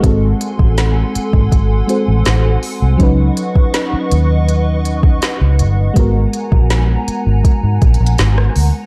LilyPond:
<<
  \new Staff \with { instrumentName = "Analog synth pad" } { \time 4/4 \key aes \dorian \tempo 4 = 81 << { <a' c'''>1 | <ces'' ees'' des'''>1 | bes''1 | } \\ { <ges'' aes''>1~ | <ges'' aes''>1 | aes''1 | } >> }
  \new Staff \with { instrumentName = "FM electric piano" } { \time 4/4 \key aes \dorian << { ees''16 r2. r8. | r1 | r1 | } \\ { <aes c' ges' a'>2~ <aes c' ges' a'>8 <aes c' ges' c''>4. | <ges des' ees' ces''>1 | <aes ces' ges' bes'>1 | } >> }
  \new Staff \with { instrumentName = "Fingered electric bass" } { \clef bass \time 4/4 \key aes \dorian aes,,8 r16 a,,8. r16 aes,,16 aes,,8 r16 a,,16 a,,8 r16 c,16 | des,8 r4 ees,4. r16 des,16 g,,8 | aes,,8 r16 bes,,8. r16 aes,,16 r16 aes,16 bes,,16 bes,,16 aes,,8 d,16 r16 | }
  \new DrumStaff \with { instrumentName = "Drums" } \drummode { \time 4/4 <hh bd>8 hh16 bd16 <hh sn>8 hh16 bd16 <hh bd>8 hh8 <hh sn>8 hho8 | <hh bd>8 hh16 bd16 <hh sn>8 hh8 hh8 hh16 bd16 <hh sn>8 hh8 | <hh bd>8 hh16 bd16 <hh sn>8 hh8 \tuplet 3/2 { <hh bd>16 r16 r16 <hh bd>16 hh16 hh16 } <hh sn>16 ss16 hho8 | }
>>